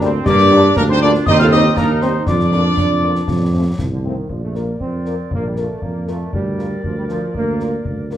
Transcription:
Already playing: D2
0.00 G3 C4, snare
0.25 G2 A#3 D4 G4 D5 D6, concert bass drum, snare, crash
0.39 snare
0.51 G3 A#3 D4, snare
0.75 D2 A#3 D4 A#4 A#5, concert bass drum, snare
0.88 C4 D#4 C5 C6
1.01 G3 A#3 D4 F4 D5 D6
1.14 snare
1.26 D#2 C4 D#4 G4 D#5 D#6, concert bass drum, snare
1.39 F4 A4 F5 F6, snare
1.51 G3 C4 D#4 G4 D#5 D#6, snare
1.77 D#2 A#3 D4 D#4 A#4 A#5, concert bass drum, snare
2.02 G3 C4 D#4 C5 C6, snare
2.27 F2 D4 F4 D5 D6, concert bass drum, snare
2.40 snare
2.52 F3 A#3 D4, snare
2.77 F2, concert bass drum, snare
3.03 F3 A#3 D4
3.15 snare
3.28 F2, concert bass drum, snare
3.53 F3 A3 C4
3.78 C2 F3, concert bass drum, snare
3.92 D3
4.04 D#3 F3 A3 C4
4.29 A#1 F3 A#4 D5, concert bass drum
4.43 A3
4.55 A#3 F4 A#4 D5, snare
4.80 F2 C4, concert bass drum
5.05 F4 A#4 D5, snare
5.31 A#1 A#3, concert bass drum
5.48 G3
5.56 A3 F4 A#4 D5, snare
5.81 F2 A#3, concert bass drum
6.07 A3 F4 A#4 D5, snare
6.32 D2 G3 A#4 D5, concert bass drum
6.58 F4 A#4 D5, snare
6.84 D2 F3, concert bass drum
6.97 G3
7.08 F3 F4 A#4 D5, snare
7.34 D2 A#3, concert bass drum
7.60 F4 A#4 D5, snare
7.85 D2, concert bass drum
8.11 F4 A#4 D5, snare

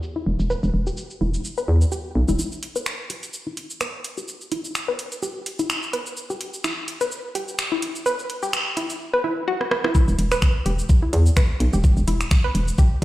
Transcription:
0.03 shaker
0.16 E4
0.26 E1
0.40 E1, shaker
0.50 B4, shaker
0.63 E1, shaker
0.74 E1
0.87 G4, shaker
0.97 shaker
1.10 shaker
1.21 E1 E4
1.34 shaker
1.45 shaker
1.58 B4, shaker
1.68 E2
1.81 shaker
1.92 G4, shaker
2.15 B1
2.28 E1 E4, shaker
2.39 E4, shaker
2.52 shaker
2.63 closed hi-hat
2.76 B4, shaker
2.86 finger snap, shaker
3.10 G4, closed hi-hat
3.23 closed hi-hat, shaker
3.34 shaker
3.47 E4
3.57 closed hi-hat
3.70 shaker
3.81 B4, finger snap, shaker
4.04 closed hi-hat
4.17 G4, shaker
4.28 shaker
4.41 shaker
4.52 E4, closed hi-hat
4.65 shaker
4.75 finger snap, shaker
4.88 B4
4.99 closed hi-hat
5.12 closed hi-hat, shaker
5.23 G4, shaker
5.46 closed hi-hat
5.59 E4, closed hi-hat, shaker
5.70 finger snap, shaker
5.83 shaker
5.93 B4, closed hi-hat
6.07 shaker
6.17 shaker
6.30 G4, shaker
6.41 closed hi-hat
6.54 shaker
6.64 E4, finger snap, shaker
6.88 closed hi-hat
7.01 B4, closed hi-hat, shaker
7.12 shaker
7.35 G4, closed hi-hat
7.48 shaker
7.59 finger snap, shaker
7.72 E4
7.82 closed hi-hat
7.95 shaker
8.06 B4, shaker
8.19 shaker
8.30 closed hi-hat
8.43 G4, shaker
8.53 finger snap, shaker
8.77 E4, closed hi-hat
8.90 closed hi-hat, shaker
9.14 B4
9.24 E4
9.48 F#4
9.61 cross-stick
9.71 cross-stick
9.84 E4, cross-stick
9.95 E4, kick, shaker
10.08 E1, shaker
10.19 E1, closed hi-hat
10.32 B4, finger snap, shaker
10.42 finger snap, kick, shaker
10.66 E1 G4, closed hi-hat
10.79 shaker
10.89 kick, shaker
11.02 E4
11.13 E2, closed hi-hat
11.26 shaker
11.37 B4, finger snap, kick, shaker
11.60 B1, closed hi-hat
11.73 E1 G4, shaker
11.84 kick, shaker
11.97 E1, shaker
12.08 E1 E4, closed hi-hat
12.21 finger snap, shaker
12.31 finger snap, kick, shaker
12.44 B4
12.55 E1, closed hi-hat
12.68 shaker
12.78 G4, kick, shaker

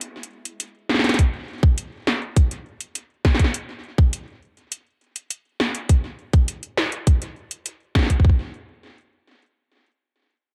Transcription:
0.01 closed hi-hat
0.23 closed hi-hat
0.45 closed hi-hat
0.60 closed hi-hat
0.89 snare
0.94 snare
0.99 snare
1.04 snare, closed hi-hat
1.09 snare, closed hi-hat
1.14 snare, closed hi-hat
1.19 kick, closed hi-hat
1.63 kick
1.78 closed hi-hat
2.07 snare
2.37 kick, closed hi-hat
2.51 closed hi-hat
2.81 closed hi-hat
2.95 closed hi-hat
3.25 kick, snare
3.35 snare
3.39 kick, closed hi-hat
3.44 snare
3.54 closed hi-hat
3.98 kick
4.13 closed hi-hat
4.72 closed hi-hat
5.16 closed hi-hat
5.30 closed hi-hat
5.60 snare
5.75 closed hi-hat
5.89 kick, closed hi-hat
6.33 kick, closed hi-hat
6.48 closed hi-hat
6.63 closed hi-hat
6.77 snare
6.92 closed hi-hat
7.07 kick, closed hi-hat
7.22 closed hi-hat
7.51 closed hi-hat
7.66 closed hi-hat
7.95 kick, snare
7.99 snare
8.03 snare
8.06 kick, snare, closed hi-hat
8.20 kick
8.25 kick
8.29 kick

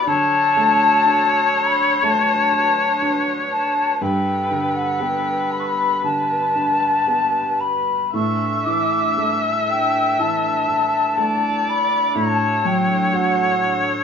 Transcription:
0.05 D3 F#3 D4 A4 C#5 A5
0.56 A3
1.06 D4
1.56 B5
2.03 A3 B4 A5
2.52 F#4
3.02 D4
3.52 A5
3.94 A5
4.01 G2 G3 B3 A4 B4 G5
4.51 D3
4.76 F#5
5.00 B3 G5
5.51 B5
5.60 C#6
5.66 B5
6.04 D3 B4 A5
6.55 D4
7.07 B3
7.60 B5
8.13 A2 E3 D4 A4 E5 C#6
8.66 E3 D6
9.17 A3
9.70 G5
10.19 E3 A5
10.68 D4
11.17 A3 D5
11.69 B5
12.15 A2 F#3 C#5 A5
12.64 F#3 G5
13.13 F#4 F#5

